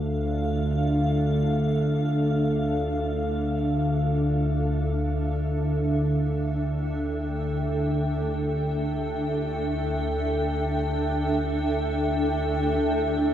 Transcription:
Already playing: synth drone D2 D3, ambient pad D4 A4 E5 F5
5.67 ambient pad G5
12.81 synth drone D2 D3

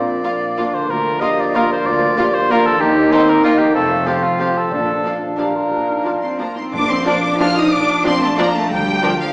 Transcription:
Already playing: double bass section A#1, cello section A#2, harp A#2 D4, french horn section F3 D4, bassoon A#3, clarinet C4, cor anglais D5, flute section F5
0.24 clarinet A#3, viola section A#3, violin section F4 F5
0.57 viola section A#3, clarinet D4, violin section F4 F5
0.71 harp D3, cor anglais C5
0.76 harp A#3
0.81 harp F4
0.88 cello section D2, double bass section D2, french horn section F3 D4, bassoon A#3, clarinet F4, cor anglais A#4, flute section F5
1.20 viola section A#3, violin section F4 F5, clarinet G4, cor anglais D#5
1.40 cor anglais D5
1.54 viola section A#3, clarinet F4, violin section F4 F5, cor anglais A#4
1.72 cor anglais C5
1.85 cello section D2, double bass section D2, cor anglais D5
2.17 viola section A#3, violin section F4 F5, clarinet G4
2.34 cor anglais C5
2.50 viola section A#3, clarinet F4, violin section F4 F5, cor anglais A#4
2.63 harp D#3, cor anglais A4
2.67 harp A#3
2.71 harp D#4
2.76 clarinet D#4, harp G4
2.80 double bass section D#2, cello section D#2, french horn section D#3 D#4, bassoon A#3, cor anglais G4, flute section D#5
3.12 viola section A#3, clarinet C4, violin section D#4 G5, cor anglais C5
3.29 cor anglais A#4
3.43 viola section A#3, clarinet A#3, violin section D#4 G5, cor anglais F4
3.58 harp F2, cor anglais G4
3.62 harp F3
3.67 harp C4
3.72 double bass section F1, french horn section F3 C4, bassoon C4, harp F4, cor anglais A4, flute section F5
3.76 cello section F2, clarinet A3
4.06 viola section F3, violin section C4 F5, clarinet F4, cor anglais G4
4.23 cor anglais F4
4.39 viola section F3, violin section C4 F5, cor anglais G4
4.54 harp A#2, cor anglais A4
4.59 harp F3
4.64 harp D4
4.68 timpani A#2, cello section A#2, bassoon D4, clarinet D4, harp F4, flute section F5
4.72 double bass section A#1, french horn section F3 D4, cor anglais A4
5.04 viola section F3, clarinet D4, violin section D4 F5
5.38 viola section F3, violin section D4 F5, clarinet G4, cor anglais A#4
5.56 clarinet F4
5.71 double bass section A#1, cello section A#2, clarinet D4
5.88 clarinet D#4
6.05 viola section F3, violin section D4 F5, clarinet F4
6.22 cello section C4, violin section C6
6.38 viola section F3, cello section A#3, violin section D4 F5 A#5, clarinet F4
6.57 cello section C4, clarinet D#4, violin section C6
6.73 double bass section A#1, timpani A#2, harp A#2, cello section D4, violin section D6
6.82 harp A#3
6.90 harp F3, cello section C4, violin section C6
6.99 harp D4
7.05 french horn section F3 A#3, viola section F3 D4, violin section D4 D5 D6, cello section D4, harp F4
7.16 harp D4
7.24 harp D5
7.32 harp F5
7.39 viola section F3 D4, french horn section F3 A#3, violin section D4 D5 F6, cello section F4, harp D5
7.48 harp F4
7.57 harp D4, cello section D#4, violin section D#6
7.64 harp F3
7.72 double bass section A#1, harp A#2, cello section D4, violin section D6
7.80 harp A#3
7.88 harp F3
7.96 harp D4
8.04 viola section F3 D4, french horn section F3 A#3, cello section C4, violin section D4 D5 C6, harp F4
8.13 harp D4
8.21 cello section A3, harp D5, violin section A5
8.30 harp F5
8.38 viola section F3 D4, french horn section F3 A#3, cello section A#3, violin section D4 D5 A#5, harp D5
8.47 harp F4
8.54 cello section A3, harp D4, violin section A5
8.64 harp F3
8.71 double bass section D2, harp D3, cello section G3, violin section G5
8.78 harp F3
8.86 harp D4
8.94 harp A#4
9.01 french horn section F3 A#3, viola section F3 D4, violin section D4 A#4, harp F4
9.12 harp D5
9.20 cello section F3, violin section F5, harp A#5
9.28 harp F5

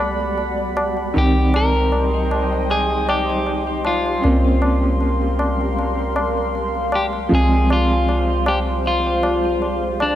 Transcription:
Already playing: 808-style bass C2, synth texture G3 G4, upright piano A3 B3 F#4, ambient pad D5 F#5 B5
0.20 tabla na
0.38 tabla na
0.58 tabla na
0.77 tabla na
0.97 tabla na
1.14 808-style bass C2, upright piano D#3, ambient pad C5 D#5 G5 C6, tabla na
1.18 upright piano C4, clean electric guitar G4
1.37 tabla na
1.54 clean electric guitar A#4, tabla na
1.75 tabla na
1.92 tabla na
2.13 tabla na
2.31 tabla na
2.53 tabla na
2.70 clean electric guitar G#4, tabla na
2.90 tabla na
3.09 clean electric guitar G4, tabla na
3.30 tabla na
3.46 tabla na
3.67 tabla na
3.85 clean electric guitar F4, tabla na
4.06 tabla na
4.21 808-style bass C2, upright piano A#3 C#4, ambient pad A#4 F5, tabla na
4.25 upright piano C4
4.45 tabla na
4.62 tabla na
4.84 tabla na
5.01 tabla na
5.22 tabla na
5.39 tabla na
5.61 tabla na
5.79 tabla na
5.99 tabla na
6.16 tabla na
6.37 tabla na
6.55 tabla na
6.75 tabla na
6.92 clean electric guitar G4, tabla na
7.13 tabla na
7.29 808-style bass C2, upright piano F3 G#3, ambient pad F4 C5, tabla na
7.33 upright piano C4, clean electric guitar G#4
7.52 tabla na
7.70 clean electric guitar F4, tabla na
7.90 tabla na
8.09 tabla na
8.29 tabla na
8.46 clean electric guitar G4, tabla na
8.68 tabla na
8.85 clean electric guitar F4, tabla na
9.06 tabla na
9.23 tabla na
9.44 tabla na
9.62 tabla na
9.84 tabla na
10.00 clean electric guitar D4, tabla na

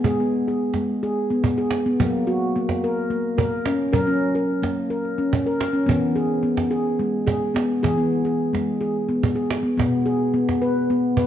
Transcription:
0.04 handpan G#3 G#4, cajon bass
0.20 handpan B3
0.48 handpan G#4
0.74 handpan G#3, cajon bass, cajon slap
1.03 handpan G#4, cajon slap
1.30 handpan B3
1.44 cajon bass
1.58 handpan G#4
1.71 cajon slap
1.86 handpan B3
2.00 handpan F#3 A#3, cajon bass
2.27 handpan F#4
2.56 handpan A#3
2.69 cajon bass, cajon slap
2.84 handpan A#4
2.97 cajon slap
3.10 handpan A#3
3.38 handpan A#4, cajon bass
3.66 handpan C#4, cajon slap
3.93 handpan F#3 A#4, cajon bass
4.07 handpan C#4
4.35 handpan A#4
4.62 handpan A#3, cajon bass, cajon slap
4.90 handpan A#4
5.05 cajon slap
5.18 handpan C#4
5.33 cajon bass
5.46 handpan A#4
5.61 cajon slap
5.73 handpan C#4
5.86 handpan E3 B3, cajon bass
6.16 handpan G#4
6.43 handpan B3
6.57 cajon bass, cajon slap
6.71 handpan G#4
6.99 handpan G#3
7.27 handpan G#4, cajon bass
7.54 handpan B3, cajon slap
7.83 handpan E3 G#4, cajon bass
7.98 handpan B3
8.25 handpan G#4
8.53 handpan G#3, cajon bass, cajon slap
8.81 handpan G#4, cajon slap
9.09 handpan B3
9.23 cajon bass
9.35 handpan G#4
9.50 cajon slap
9.63 handpan B3
9.78 handpan B2 B3, cajon bass
10.06 handpan G#4
10.34 handpan B3
10.49 cajon bass, cajon slap
10.62 handpan B4
10.77 cajon slap
10.90 handpan B3
11.17 handpan B4, cajon bass

